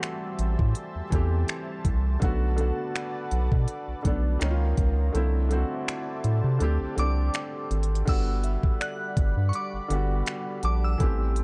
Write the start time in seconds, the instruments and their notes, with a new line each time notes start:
Already playing: felt piano E3 A3 C4 F#4 G4, analog synth pad G3 C5 E5 A5
0.03 finger snap, closed hi-hat
0.39 analog synth bass A1, closed hi-hat
0.59 analog synth bass A2, kick
0.75 closed hi-hat
0.95 analog synth bass E2
1.10 analog synth bass E2, felt piano E3 A3 C4, kick, closed hi-hat
1.15 felt piano G4
1.48 finger snap, closed hi-hat
1.85 analog synth bass C2, kick, closed hi-hat
2.20 analog synth bass B1, felt piano D3 A3 B3, analog synth pad F#4 B4 D5, kick, closed hi-hat
2.24 felt piano F#4
2.56 felt piano D3 A3 B3, closed hi-hat
2.61 felt piano F#4
2.95 finger snap, closed hi-hat
3.31 analog synth bass B1, closed hi-hat
3.52 analog synth bass B2, kick
3.68 closed hi-hat
3.88 analog synth bass B1
4.03 analog synth bass B1, felt piano D3 A3 B3, kick, closed hi-hat
4.07 felt piano D4
4.39 analog synth bass C#2, felt piano D#3 A#3 C#4, analog synth pad F4 C#5 D#5 A#5, finger snap, closed hi-hat
4.44 felt piano D#4
4.50 felt piano F4
4.77 analog synth bass C#2, kick, closed hi-hat
5.12 analog synth bass C2, felt piano D3 A3 C4, analog synth pad E4 C5 D5 A5, closed hi-hat
5.17 felt piano E4
5.49 felt piano D3 A3 C4, closed hi-hat
5.54 felt piano F#4
5.88 finger snap, closed hi-hat
6.24 analog synth bass A2, closed hi-hat
6.44 analog synth bass C3
6.59 analog synth bass D2, felt piano D3 A3 C4, analog synth pad G4, closed hi-hat
6.63 felt piano G4
6.81 analog synth bass C2
6.96 analog synth bass C2, felt piano D3 A3 C4, synth bell D6, closed hi-hat
7.00 felt piano D4
7.34 finger snap, closed hi-hat
7.71 analog synth bass G#1, closed hi-hat
7.83 closed hi-hat
7.95 closed hi-hat
8.05 analog synth bass G1, felt piano D3 G3 B3, analog synth pad G3 D5 F#5 B5, synth bell E6, kick, closed hi-hat, crash
8.10 felt piano F#4
8.43 synth bell E5, closed hi-hat
8.63 kick
8.80 synth bell D5 F#6, finger snap, closed hi-hat
9.17 analog synth bass G1, kick, closed hi-hat
9.37 analog synth bass G2
9.49 synth bell C#6
9.53 synth bell D6, closed hi-hat
9.74 analog synth bass G1
9.88 analog synth bass G1, felt piano D3 G3 B3, synth bell F#5, closed hi-hat
9.93 felt piano F#4
10.26 finger snap, closed hi-hat
10.63 analog synth bass A#1, synth bell A5 D6, closed hi-hat
10.84 synth bell E6
10.98 analog synth bass A1, felt piano E3 A3 C4, analog synth pad C5 E5 A5, kick, closed hi-hat
11.03 felt piano G4
11.36 closed hi-hat